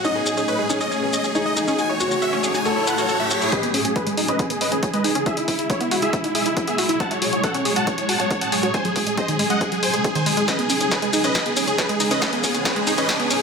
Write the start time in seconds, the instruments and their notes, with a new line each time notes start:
Already playing: ambient pad A3 G#4
0.04 ambient pad C#3 E3 D#4, synth pluck C#4, grand piano D#4, supersaw synth D#5, riser, shaker
0.15 synth pluck B3, supersaw synth G#4
0.26 synth pluck C#4, supersaw synth G#4, shaker
0.37 synth pluck C#4, supersaw synth G#4, shaker
0.48 supersaw synth B4, synth pluck C#5, shaker
0.59 synth pluck G#3, supersaw synth G#4
0.70 grand piano C#4, synth pluck D#4, supersaw synth G#4, shaker
0.81 synth pluck C#4, supersaw synth D#5, shaker
0.91 synth pluck C#4, supersaw synth G#4, shaker
1.02 synth pluck B3, supersaw synth G#4
1.13 synth pluck C#4, supersaw synth D#5, shaker
1.24 synth pluck C#4, supersaw synth G#4, shaker
1.35 grand piano D#4, supersaw synth G#4, synth pluck C#5, shaker
1.46 synth pluck G#3, supersaw synth D#5
1.57 synth pluck D#4, supersaw synth G#4, shaker
1.68 synth pluck C#4, supersaw synth G#4, shaker
1.78 ambient pad A2 F#3 C#4 F#4, synth pluck F#4, supersaw synth G#5, shaker
1.89 synth pluck E4, supersaw synth C#5
2.00 synth pluck F#4, grand piano F#4, supersaw synth C#5, shaker
2.11 synth pluck F#4, supersaw synth C#5, shaker
2.22 supersaw synth E5, synth pluck F#5, shaker
2.33 synth pluck C#4, supersaw synth C#5
2.44 synth pluck G#4, supersaw synth C#5, shaker
2.54 synth pluck F#4, supersaw synth G#5, shaker
2.65 synth pluck F#4, grand piano A4, supersaw synth C#5, shaker
2.76 synth pluck E4, supersaw synth C#5
2.87 synth pluck B4, supersaw synth F#5, shaker
2.98 synth pluck F#4, supersaw synth C#5, shaker
3.09 synth pluck A4, supersaw synth C#5, shaker
3.20 synth pluck A4, supersaw synth E5
3.31 synth pluck F#4, supersaw synth C#5, shaker
3.41 synth pluck E4, supersaw synth C#5, shaker
3.52 ambient pad C#3 E3 G#3 D#4 G#4, synth pluck C#4, supersaw synth B4 D#5, kick, closed hi-hat
3.63 synth pluck B3, supersaw synth G#4, closed hi-hat
3.74 synth pluck C#4, supersaw synth G#4, open hi-hat
3.85 synth pluck C#4, supersaw synth G#4, closed hi-hat
3.96 supersaw synth G#4 B4, synth pluck C#5, kick, closed hi-hat
4.07 synth pluck G#3, supersaw synth G#4, closed hi-hat
4.17 synth pluck D#4, supersaw synth G#4, open hi-hat
4.28 synth pluck C#4, supersaw synth B4 D#5, closed hi-hat
4.39 synth pluck C#4, supersaw synth G#4, kick, closed hi-hat
4.50 synth pluck B3, supersaw synth G#4, closed hi-hat
4.61 synth pluck C#4, supersaw synth B4 D#5, open hi-hat
4.72 synth pluck C#4, supersaw synth G#4, closed hi-hat
4.83 supersaw synth G#4, synth pluck C#5, kick, closed hi-hat
4.94 synth pluck G#3, supersaw synth B4 D#5, closed hi-hat
5.04 synth pluck D#4, supersaw synth G#4, open hi-hat
5.15 synth pluck C#4, supersaw synth G#4, closed hi-hat
5.26 ambient pad B2 F#3 E4 G#4, synth pluck E4, supersaw synth G#4 E5, kick, closed hi-hat
5.37 synth pluck D#4, supersaw synth E4, closed hi-hat
5.48 synth pluck E4, supersaw synth E4, kick, open hi-hat
5.59 synth pluck E4, supersaw synth E4, closed hi-hat
5.70 supersaw synth E4 C#5, synth pluck E5, kick, closed hi-hat
5.81 synth pluck B3, supersaw synth E4, closed hi-hat
5.91 supersaw synth E4, synth pluck F#4, open hi-hat
6.02 synth pluck E4, supersaw synth G#4 E5, closed hi-hat
6.13 supersaw synth E4, synth pluck E4, kick, closed hi-hat
6.24 synth pluck D#4, supersaw synth E4, closed hi-hat
6.35 synth pluck E4, supersaw synth G#4 E5, open hi-hat
6.46 synth pluck E4, supersaw synth E4, closed hi-hat
6.57 supersaw synth E4, synth pluck E5, kick, closed hi-hat
6.67 synth pluck B3, supersaw synth G#4 E5, closed hi-hat
6.78 supersaw synth E4, synth pluck F#4, open hi-hat
6.89 synth pluck E4, supersaw synth E4, closed hi-hat
7.00 ambient pad A2 C#4, synth pluck F#4, supersaw synth F#5 A5, kick, closed hi-hat
7.11 synth pluck E4, supersaw synth C#5, closed hi-hat
7.22 synth pluck F#4, supersaw synth C#5, open hi-hat
7.33 synth pluck F#4, supersaw synth C#5, closed hi-hat
7.44 supersaw synth A4 F#5, synth pluck F#5, kick, closed hi-hat
7.54 synth pluck C#4, supersaw synth C#5, closed hi-hat
7.65 synth pluck G#4, supersaw synth C#5, open hi-hat
7.76 synth pluck F#4, supersaw synth F#5 A5, closed hi-hat
7.87 synth pluck F#4, supersaw synth C#5, kick, closed hi-hat
7.98 synth pluck E4, supersaw synth C#5, closed hi-hat
8.09 synth pluck F#4, supersaw synth F#5 A5, open hi-hat
8.20 synth pluck F#4, supersaw synth C#5, closed hi-hat
8.31 supersaw synth C#5, synth pluck F#5, kick, closed hi-hat
8.41 synth pluck C#4, supersaw synth F#5 A5, closed hi-hat
8.52 synth pluck G#4, supersaw synth C#5, open hi-hat
8.63 synth pluck F#4, supersaw synth C#5, closed hi-hat
8.74 ambient pad C3 D#4, synth pluck G#3, supersaw synth C5 G#5, kick, closed hi-hat
8.85 synth pluck F#3, supersaw synth G#4, closed hi-hat
8.96 synth pluck G#3, supersaw synth G#4, kick, open hi-hat
9.07 synth pluck G#3, supersaw synth G#4, closed hi-hat
9.17 synth pluck G#4, supersaw synth C5 D#5, kick, closed hi-hat
9.28 synth pluck D#3, supersaw synth G#4, closed hi-hat
9.39 synth pluck G#3, supersaw synth G#4, open hi-hat
9.50 synth pluck G#3, supersaw synth D#5 F#5, closed hi-hat
9.61 synth pluck G#3, supersaw synth G#4, kick, closed hi-hat
9.72 synth pluck F#3, supersaw synth G#4, closed hi-hat
9.83 synth pluck G#3, supersaw synth C5 G#5, open hi-hat
9.94 synth pluck G#3, supersaw synth G#4, closed hi-hat
10.04 synth pluck G#4, supersaw synth G#4, kick, closed hi-hat
10.15 synth pluck D#3, supersaw synth C5 G#5, closed hi-hat
10.26 synth pluck G#3, supersaw synth G#4, open hi-hat
10.37 synth pluck G#3, supersaw synth G#4, closed hi-hat
10.48 ambient pad C#3 E3 G#4, synth pluck C#4, supersaw synth B4 D#5, kick, snare, closed hi-hat, riser, shaker
10.59 synth pluck B3, supersaw synth G#4, closed hi-hat
10.70 synth pluck C#4, supersaw synth G#4, open hi-hat, shaker
10.81 synth pluck C#4, supersaw synth G#4, closed hi-hat, shaker
10.91 supersaw synth G#4 B4, synth pluck C#5, kick, snare, closed hi-hat, shaker
11.02 synth pluck G#3, supersaw synth G#4, closed hi-hat
11.13 synth pluck D#4, supersaw synth G#4, open hi-hat, shaker
11.24 synth pluck C#4, supersaw synth B4 D#5, closed hi-hat, shaker
11.35 synth pluck C#4, supersaw synth B4 D#5, kick, snare, closed hi-hat, shaker
11.46 synth pluck B3, supersaw synth G#4, closed hi-hat
11.57 synth pluck C#4, supersaw synth G#4, open hi-hat, shaker
11.67 synth pluck C#4, supersaw synth G#4, closed hi-hat, shaker
11.78 supersaw synth G#4 B4, synth pluck C#5, kick, snare, closed hi-hat, shaker
11.89 synth pluck G#3, supersaw synth G#4, closed hi-hat
12.00 synth pluck D#4, supersaw synth G#4, open hi-hat, shaker
12.11 synth pluck C#4, supersaw synth B4 D#5, closed hi-hat, shaker
12.22 ambient pad A2 F#3 G#3 C#4, synth pluck C#4, supersaw synth B4 D#5, kick, snare, closed hi-hat, shaker
12.33 synth pluck B3, supersaw synth G#4, closed hi-hat
12.44 synth pluck C#4, supersaw synth G#4, kick, open hi-hat, shaker
12.54 synth pluck C#4, supersaw synth G#4, closed hi-hat, shaker
12.65 supersaw synth G#4 B4, synth pluck C#5, kick, snare, closed hi-hat, shaker
12.76 synth pluck G#3, supersaw synth G#4, closed hi-hat
12.87 synth pluck D#4, supersaw synth G#4, open hi-hat, shaker
12.98 synth pluck C#4, supersaw synth B4 D#5, closed hi-hat, shaker
13.09 synth pluck C#4, supersaw synth B4 D#5, kick, snare, closed hi-hat, shaker
13.20 synth pluck B3, supersaw synth G#4, closed hi-hat
13.31 synth pluck C#4, supersaw synth G#4, open hi-hat, shaker